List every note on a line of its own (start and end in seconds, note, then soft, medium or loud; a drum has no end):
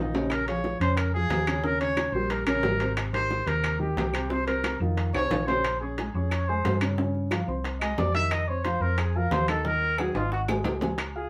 0.00 0.74 A#1 medium
0.00 0.10 D#3 medium
0.00 0.11 D#4 medium
0.00 0.33 D#4 medium
0.00 0.11 F4 medium
0.14 0.41 C#3 medium
0.14 0.41 C#4 medium
0.14 0.41 C#5 medium
0.14 high bongo soft
0.14 low timbale medium
0.30 0.47 A#4 medium
0.30 high bongo medium
0.30 high timbale medium
0.30 claves medium
0.48 0.75 F3 medium
0.48 0.75 F4 medium
0.48 0.75 G#4 medium
0.48 0.78 C#5 loud
0.48 high timbale medium
0.64 high bongo medium
0.64 low timbale medium
0.80 1.27 F2 medium
0.80 1.08 C#3 medium
0.80 1.08 C#4 medium
0.80 0.99 C5 medium
0.80 1.08 C#5 medium
0.80 high timbale medium
0.97 1.13 A#4 medium
0.97 high bongo medium
0.97 high timbale medium
0.97 claves medium
1.14 1.42 F3 medium
1.14 1.42 F4 medium
1.14 1.66 G#4 loud
1.14 1.42 G#4 medium
1.29 2.08 D#2 medium
1.29 high bongo medium
1.29 low bongo medium
1.29 high timbale medium
1.29 low timbale medium
1.47 1.61 C#3 medium
1.47 1.61 C#4 medium
1.47 1.61 C#5 medium
1.47 high timbale medium
1.47 claves medium
1.64 1.78 C#3 medium
1.64 1.78 C#4 medium
1.64 1.80 A#4 medium
1.64 1.78 C#5 medium
1.64 high bongo medium
1.80 2.08 C#3 medium
1.80 2.08 C#4 medium
1.80 2.15 C#5 medium
1.80 high bongo soft
1.80 high timbale medium
1.97 high bongo medium
1.97 high timbale medium
1.97 low timbale medium
1.97 claves medium
2.12 2.44 A#1 medium
2.12 2.42 G3 medium
2.12 2.42 G4 medium
2.12 2.42 A#4 medium
2.12 2.33 C5 medium
2.30 2.46 A#4 medium
2.30 high bongo medium
2.30 high timbale medium
2.47 2.62 A#1 medium
2.47 2.61 C#3 medium
2.47 2.61 C#4 medium
2.47 2.93 A#4 medium
2.47 2.61 C#5 medium
2.47 high bongo soft
2.47 high timbale medium
2.47 claves medium
2.63 3.41 G#1 loud
2.63 2.77 G3 medium
2.63 2.77 G4 medium
2.63 2.78 A#4 medium
2.63 high bongo medium
2.63 low bongo medium
2.63 low timbale medium
2.80 3.08 C3 medium
2.80 3.08 C4 medium
2.80 3.08 C5 medium
2.80 high bongo soft
2.80 high timbale medium
2.97 high bongo medium
2.97 high timbale loud
2.97 claves medium
3.13 3.41 D#3 medium
3.13 3.41 D#4 medium
3.13 3.41 G4 medium
3.13 3.49 C5 medium
3.13 high timbale medium
3.31 high bongo medium
3.31 low timbale medium
3.46 3.93 D#2 loud
3.46 3.74 C3 medium
3.46 3.74 C4 medium
3.46 3.80 A#4 medium
3.46 3.74 C5 medium
3.46 high timbale medium
3.64 high bongo medium
3.64 high timbale medium
3.64 claves medium
3.79 4.07 D#3 medium
3.79 4.07 D#4 medium
3.79 4.07 G4 medium
3.79 4.32 G4 medium
3.96 4.75 C2 loud
3.96 high bongo medium
3.96 low bongo medium
3.96 high timbale medium
3.96 low timbale medium
4.13 4.27 C3 medium
4.13 4.27 C4 medium
4.13 4.28 C5 medium
4.13 high timbale medium
4.13 claves medium
4.30 4.44 C3 medium
4.30 4.44 C4 medium
4.30 4.44 C5 medium
4.30 4.46 C5 medium
4.30 high bongo medium
4.47 4.75 C3 medium
4.47 4.75 C4 medium
4.47 4.78 A#4 medium
4.47 4.75 C5 medium
4.47 high bongo soft
4.47 high timbale medium
4.64 high bongo medium
4.64 high timbale loud
4.64 low timbale medium
4.64 claves medium
4.80 5.12 F2 loud
4.80 5.08 D#3 medium
4.80 5.08 D#4 medium
4.80 5.09 F4 medium
4.97 high bongo medium
4.97 high timbale medium
5.14 5.29 C2 medium
5.14 5.28 C3 loud
5.14 5.28 C4 medium
5.14 5.29 C5 medium
5.14 5.45 C#5 loud
5.14 high bongo soft
5.14 high timbale medium
5.14 claves medium
5.31 6.09 A#1 loud
5.31 5.45 D#3 medium
5.31 5.45 D#4 medium
5.31 5.45 F4 medium
5.31 high bongo medium
5.31 low bongo medium
5.31 high timbale loud
5.47 5.61 C#3 medium
5.47 5.62 C#4 medium
5.47 5.79 C5 medium
5.47 5.62 C#5 medium
5.47 high bongo soft
5.47 low timbale medium
5.64 high bongo medium
5.64 high timbale medium
5.64 claves medium
5.80 5.95 C#4 medium
5.80 6.33 G#4 medium
5.80 5.95 C#5 medium
5.80 5.96 C#6 medium
5.98 6.12 G#3 medium
5.98 6.12 G#4 medium
5.98 6.12 G#5 medium
5.98 high bongo medium
5.98 high timbale medium
5.98 low timbale medium
6.14 6.61 F2 loud
6.14 6.42 C#4 medium
6.14 6.42 C#5 medium
6.14 6.42 C#6 medium
6.31 6.49 C#5 medium
6.31 high bongo medium
6.31 high timbale medium
6.31 claves medium
6.48 6.76 G#3 medium
6.48 6.76 G#4 medium
6.48 6.81 C5 medium
6.48 6.76 G#5 medium
6.64 7.42 G2 medium
6.64 high bongo medium
6.64 low bongo medium
6.64 high timbale medium
6.64 low timbale medium
6.81 6.95 C#3 medium
6.81 6.96 C#4 medium
6.81 6.96 C#5 medium
6.81 high timbale medium
6.81 claves medium
6.98 7.26 C#3 medium
6.98 7.26 C#4 medium
6.98 7.26 C#5 medium
6.98 high bongo medium
7.15 high bongo soft
7.31 7.45 F3 medium
7.31 7.45 F4 medium
7.31 7.46 F5 medium
7.31 high bongo medium
7.31 high timbale loud
7.31 low timbale medium
7.31 claves medium
7.48 7.95 C2 loud
7.48 7.75 C4 medium
7.48 7.76 C5 medium
7.48 7.76 C6 medium
7.48 high bongo soft
7.64 high bongo medium
7.64 high timbale medium
7.81 8.09 G#3 medium
7.81 8.09 G#4 medium
7.81 8.00 D#5 medium
7.81 8.09 G#5 medium
7.81 high timbale medium
7.81 claves medium
7.98 8.76 F2 medium
7.98 8.14 D5 medium
7.98 high bongo medium
7.98 low bongo medium
7.98 low timbale medium
8.14 8.42 D#3 medium
8.14 8.43 D#4 medium
8.14 8.43 D#5 medium
8.14 8.33 E5 loud
8.14 high bongo soft
8.14 high timbale medium
8.31 8.49 D#5 loud
8.31 high bongo medium
8.31 high timbale medium
8.31 claves medium
8.48 8.62 C4 medium
8.48 8.62 C5 medium
8.48 8.66 C#5 medium
8.48 8.62 C6 medium
8.65 8.79 F3 medium
8.65 8.79 F4 medium
8.65 8.83 C5 medium
8.65 8.79 F5 medium
8.65 high bongo medium
8.65 high timbale medium
8.65 low timbale medium
8.80 9.28 F2 loud
8.80 9.09 C4 medium
8.80 9.01 A#4 medium
8.80 9.10 C5 medium
8.80 9.09 C6 medium
8.98 9.18 G#4 medium
8.98 high bongo medium
8.98 high timbale medium
8.98 claves medium
9.15 9.43 F3 medium
9.15 9.43 F4 medium
9.15 9.33 A#4 medium
9.15 9.43 F5 medium
9.31 10.09 D#2 medium
9.31 9.48 C5 medium
9.31 high bongo medium
9.31 low bongo medium
9.31 high timbale medium
9.31 low timbale medium
9.48 9.62 D#3 medium
9.48 9.62 D#4 medium
9.48 9.67 A4 medium
9.48 9.63 D#5 medium
9.48 high timbale medium
9.48 claves medium
9.65 9.92 D#3 medium
9.65 9.92 D#4 medium
9.65 10.00 A#4 loud
9.65 9.92 D#5 medium
9.65 high bongo medium
9.82 high bongo soft
9.98 10.12 F#3 medium
9.98 10.13 F#4 medium
9.98 10.18 G#4 medium
9.98 10.13 F#5 medium
9.98 high bongo medium
9.98 high timbale medium
9.98 claves medium
10.14 10.62 G#1 loud
10.14 10.42 D#4 medium
10.14 10.32 F4 medium
10.14 10.42 D#5 medium
10.14 10.43 D#6 medium
10.14 high bongo soft
10.14 high timbale medium
10.32 10.42 F#4 medium
10.32 high bongo medium
10.48 10.76 G#3 medium
10.48 10.76 G#4 medium
10.48 10.77 G#5 medium
10.48 high bongo medium
10.48 low timbale medium
10.48 claves medium
10.64 11.29 C#2 medium
10.64 high bongo loud
10.64 low timbale loud
10.81 11.09 G#3 medium
10.81 11.10 G#4 medium
10.81 11.10 G#5 medium
10.81 low bongo medium
10.81 low timbale medium
10.98 high bongo medium
10.98 high timbale loud
10.98 claves medium
11.15 11.29 F4 medium
11.15 11.29 G#4 medium
11.15 11.29 F5 medium
11.15 11.29 F6 medium